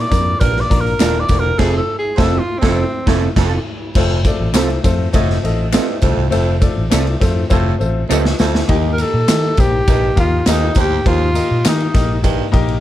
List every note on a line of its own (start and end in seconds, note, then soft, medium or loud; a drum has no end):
0.01 0.42 D5 loud
0.09 0.33 F2 loud
0.09 0.32 A#3 medium
0.09 0.33 D4 medium
0.09 0.33 F4 medium
0.09 0.33 A#4 medium
0.09 kick loud
0.09 closed hi-hat medium
0.13 tambourine medium
0.40 0.63 A#1 loud
0.40 0.65 G2 medium
0.40 0.62 A#3 medium
0.40 0.62 D4 medium
0.40 0.63 F4 medium
0.40 0.62 A#4 loud
0.40 0.63 A#4 medium
0.40 kick medium
0.40 closed hi-hat medium
0.40 tambourine medium
0.57 0.82 D5 loud
0.57 snare soft
0.70 0.93 A#1 medium
0.70 0.92 A#3 loud
0.70 0.92 D4 medium
0.70 0.92 F4 medium
0.70 0.93 A#4 loud
0.70 kick loud
0.70 closed hi-hat medium
0.81 1.21 A#4 loud
0.86 closed hi-hat soft
0.99 1.23 D#1 medium
0.99 1.24 F2 medium
0.99 1.22 A#3 loud
0.99 1.13 D4 loud
0.99 1.22 D4 loud
0.99 1.13 F4 loud
0.99 1.22 F4 medium
0.99 1.14 A#4 loud
0.99 1.23 A#4 loud
0.99 snare loud
0.99 clap medium
0.99 closed hi-hat medium
0.99 tambourine medium
1.20 1.41 D5 loud
1.29 1.51 E1 medium
1.29 1.53 D2 medium
1.29 1.51 A#3 medium
1.29 1.52 D4 medium
1.29 1.52 F4 medium
1.29 1.52 A#4 medium
1.29 kick medium
1.29 closed hi-hat medium
1.29 tambourine medium
1.40 1.60 A#4 loud
1.58 1.79 F1 loud
1.58 1.74 F2 loud
1.58 1.79 A3 loud
1.58 1.79 C4 loud
1.58 1.79 F4 loud
1.58 1.80 F4 loud
1.58 1.77 G#4 loud
1.58 1.80 A4 loud
1.58 kick loud
1.58 snare loud
1.58 crash medium
1.78 1.97 A4 medium
1.99 2.17 G#4 medium
2.16 2.39 F1 loud
2.16 2.33 F2 medium
2.16 2.38 A3 loud
2.16 2.38 C4 loud
2.16 2.38 F4 loud
2.16 2.39 F4 loud
2.16 2.41 A4 loud
2.16 2.39 A4 loud
2.16 2.20 C5 medium
2.16 2.39 C5 loud
2.16 kick loud
2.16 snare loud
2.39 2.60 F4 medium
2.59 2.77 A2 medium
2.59 2.82 A3 loud
2.59 3.17 C4 medium
2.59 2.83 C4 medium
2.59 2.83 C4 loud
2.59 2.83 F4 medium
2.63 2.83 F1 loud
2.63 2.83 F4 loud
2.63 2.83 A4 loud
2.63 kick loud
2.63 snare loud
3.06 3.27 F1 loud
3.06 3.22 A2 medium
3.06 3.27 A3 loud
3.06 3.27 C4 loud
3.06 3.27 C4 medium
3.06 3.27 F4 loud
3.06 3.28 F4 medium
3.06 3.28 A4 loud
3.06 3.28 A4 medium
3.06 kick loud
3.06 snare loud
3.36 3.57 F1 loud
3.36 3.52 F2 loud
3.36 3.57 C4 loud
3.36 3.57 F4 loud
3.36 3.58 A4 loud
3.36 kick loud
3.36 snare loud
3.36 crash medium
3.95 4.29 F1 loud
3.95 4.20 F2 medium
3.95 4.18 A3 loud
3.95 4.18 C4 loud
3.95 4.18 F4 loud
3.95 4.18 A4 loud
3.95 4.19 C5 loud
3.95 kick loud
3.95 crash medium
3.95 tambourine soft
4.25 4.47 A3 loud
4.25 4.47 C4 medium
4.25 4.47 F4 medium
4.25 4.48 A4 medium
4.25 4.48 D5 loud
4.25 kick medium
4.25 ride medium
4.25 tambourine medium
4.40 4.55 A1 medium
4.54 4.77 C2 loud
4.54 4.77 A3 medium
4.54 4.67 C4 medium
4.54 4.77 C4 medium
4.54 4.68 F4 loud
4.54 4.77 F4 medium
4.54 4.68 A4 loud
4.54 4.78 A4 medium
4.54 4.78 C5 loud
4.54 snare loud
4.54 clap loud
4.54 ride medium
4.54 tambourine loud
4.70 ride soft
4.83 5.06 F2 loud
4.83 5.06 A3 loud
4.83 5.06 C4 medium
4.83 5.06 F4 medium
4.83 5.06 A4 medium
4.83 5.07 C5 loud
4.83 kick loud
4.83 ride medium
4.83 tambourine medium
5.13 5.37 F1 loud
5.13 5.38 A2 medium
5.13 5.35 A3 loud
5.13 5.36 C4 loud
5.13 5.36 F4 loud
5.13 5.36 A4 loud
5.13 5.36 D#5 loud
5.13 kick loud
5.13 ride medium
5.13 tambourine medium
5.30 snare soft
5.43 5.77 A1 medium
5.43 5.65 A3 medium
5.43 5.65 C4 medium
5.43 5.66 F4 medium
5.43 5.66 A4 medium
5.43 5.66 D#5 loud
5.43 ride medium
5.73 5.97 G2 medium
5.73 5.95 A3 medium
5.73 5.86 C4 medium
5.73 5.95 C4 medium
5.73 5.86 F4 medium
5.73 5.95 F4 medium
5.73 5.95 A4 medium
5.73 5.87 A4 loud
5.73 5.96 D#5 loud
5.73 snare loud
5.73 clap medium
5.73 ride medium
5.73 tambourine medium
6.01 6.14 C2 medium
6.01 6.27 F2 medium
6.01 6.24 A3 medium
6.01 6.24 C4 medium
6.01 6.24 F4 medium
6.01 6.25 A4 medium
6.01 6.25 C5 loud
6.01 kick medium
6.01 ride medium
6.01 tambourine medium
6.17 6.29 C2 medium
6.30 6.66 F1 loud
6.30 6.56 F2 medium
6.30 6.53 A3 loud
6.30 6.53 C4 loud
6.30 6.54 F4 loud
6.30 6.54 A4 loud
6.30 6.54 C5 loud
6.30 ride medium
6.30 tambourine soft
6.60 6.83 A3 medium
6.60 6.83 C4 medium
6.60 6.83 F4 medium
6.60 6.83 A4 medium
6.60 6.84 D5 loud
6.60 kick medium
6.60 ride medium
6.60 tambourine medium
6.78 6.88 A1 medium
6.90 7.14 C2 medium
6.90 7.13 A3 medium
6.90 7.13 C4 medium
6.90 7.04 C4 loud
6.90 7.13 F4 medium
6.90 7.05 F4 medium
6.90 7.13 A4 medium
6.90 7.05 A4 loud
6.90 7.14 D5 loud
6.90 snare loud
6.90 clap loud
6.90 ride medium
6.90 tambourine loud
7.07 ride soft
7.20 7.43 F2 loud
7.20 7.43 A3 medium
7.20 7.43 C4 medium
7.20 7.43 F4 medium
7.20 7.43 A4 medium
7.20 7.43 C5 loud
7.20 kick loud
7.20 snare soft
7.20 ride medium
7.20 tambourine medium
7.50 7.73 F1 loud
7.50 7.74 A2 medium
7.50 7.72 A3 loud
7.50 7.72 C4 loud
7.50 7.72 F4 loud
7.50 7.73 A4 loud
7.50 7.73 C5 loud
7.50 kick loud
7.50 tambourine medium
7.78 8.03 A1 medium
7.78 8.01 A3 medium
7.78 8.01 C4 medium
7.78 8.02 F4 medium
7.78 8.02 A4 medium
7.78 8.02 C5 medium
7.78 tambourine soft
8.09 8.32 C#2 medium
8.09 8.34 G2 medium
8.09 8.31 A3 medium
8.09 8.23 C4 medium
8.09 8.32 C4 medium
8.09 8.23 F4 medium
8.09 8.32 F4 medium
8.09 8.23 A4 medium
8.09 8.32 A4 medium
8.09 8.32 D#5 loud
8.09 clap medium
8.09 tambourine medium
8.25 snare medium
8.39 8.62 D2 medium
8.39 8.63 F2 medium
8.39 8.61 A3 medium
8.39 8.61 C4 medium
8.39 8.62 F4 medium
8.39 8.62 A4 medium
8.39 8.62 C5 loud
8.39 snare loud
8.39 tambourine medium
8.55 snare medium
8.68 8.93 D#2 medium
8.68 9.02 D#2 medium
8.68 9.54 D#3 medium
8.68 8.90 A#3 loud
8.68 8.91 D#4 loud
8.68 8.91 G4 loud
8.68 8.91 A#4 loud
8.68 8.91 D#5 loud
8.68 kick medium
8.68 ride medium
8.93 9.03 A#4 medium
8.98 9.20 A#3 medium
8.98 9.21 D#4 medium
8.98 9.21 G4 medium
8.98 9.62 A4 loud
8.98 9.21 A#4 medium
8.98 9.21 D#5 medium
8.98 ride medium
8.98 tambourine medium
9.14 9.25 A#2 medium
9.28 9.50 D#3 loud
9.28 9.50 A#3 medium
9.28 9.50 D#4 medium
9.28 9.51 G4 medium
9.28 9.51 A#4 medium
9.28 9.51 D#5 medium
9.28 snare loud
9.28 clap loud
9.28 ride medium
9.28 tambourine loud
9.57 9.80 A#1 medium
9.57 9.80 A#3 medium
9.57 9.80 D#4 medium
9.57 9.80 G4 medium
9.57 10.18 G4 loud
9.57 9.80 A#4 medium
9.57 9.81 C5 medium
9.57 kick loud
9.57 ride medium
9.57 tambourine medium
9.88 10.10 A#1 medium
9.88 10.12 G2 medium
9.88 10.09 A#3 medium
9.88 10.10 D#4 medium
9.88 10.10 G4 medium
9.88 10.10 A#4 medium
9.88 10.10 D#5 medium
9.88 kick loud
9.88 ride medium
9.88 tambourine medium
10.16 10.39 D#2 medium
10.16 10.38 A#3 medium
10.16 10.38 D#4 medium
10.16 10.51 F4 loud
10.16 10.39 G4 medium
10.16 10.39 A#4 medium
10.16 10.39 F5 loud
10.16 kick medium
10.16 ride medium
10.16 tambourine soft
10.46 10.69 D#2 medium
10.46 10.71 F2 medium
10.46 10.68 A#3 medium
10.46 10.69 D#4 medium
10.46 10.69 G4 medium
10.46 10.69 A#4 medium
10.46 10.69 D#5 loud
10.46 snare loud
10.46 clap medium
10.46 ride medium
10.46 tambourine medium
10.50 10.78 D#4 medium
10.75 10.98 D2 medium
10.75 11.00 D#2 medium
10.75 10.98 A#3 medium
10.75 10.98 D#4 medium
10.75 10.98 G4 medium
10.75 10.98 A#4 medium
10.75 10.99 C5 medium
10.75 kick medium
10.75 ride medium
10.75 tambourine medium
10.80 11.06 G4 loud
11.05 11.29 D#2 medium
11.05 11.39 D#2 medium
11.05 11.91 D#3 medium
11.05 11.27 A#3 medium
11.05 11.27 D#4 medium
11.05 11.70 F4 loud
11.05 11.28 G4 medium
11.05 11.28 A#4 medium
11.05 11.28 C5 loud
11.05 kick medium
11.05 ride medium
11.34 11.57 A#3 medium
11.34 11.57 D#4 medium
11.34 11.57 G4 medium
11.34 11.57 A#4 medium
11.34 11.57 D#5 medium
11.34 ride medium
11.34 tambourine medium
11.51 11.62 A#2 medium
11.64 11.88 D#3 loud
11.64 11.87 A#3 medium
11.64 11.87 D#4 medium
11.64 12.26 D#4 medium
11.64 11.87 G4 medium
11.64 11.87 A#4 medium
11.64 11.87 D#5 medium
11.64 snare loud
11.64 clap loud
11.64 ride medium
11.64 tambourine loud
11.80 ride soft
11.94 12.39 A#1 medium
11.94 12.16 A#3 medium
11.94 12.16 D#4 medium
11.94 12.16 G4 medium
11.94 12.16 A#4 medium
11.94 12.17 D#5 medium
11.94 kick loud
11.94 snare soft
11.94 ride medium
11.94 tambourine medium
12.22 12.47 G2 medium
12.22 12.45 A#3 medium
12.22 12.45 D#4 medium
12.22 12.45 G4 medium
12.22 12.46 A#4 medium
12.22 12.46 D#5 medium
12.22 kick loud
12.22 ride medium
12.22 tambourine medium
12.52 12.80 A#1 loud
12.52 12.75 A#3 loud
12.52 12.75 D#4 loud
12.52 12.75 G4 loud
12.52 12.75 A#4 loud
12.52 12.75 D#5 loud
12.52 kick medium
12.52 ride medium
12.69 ride soft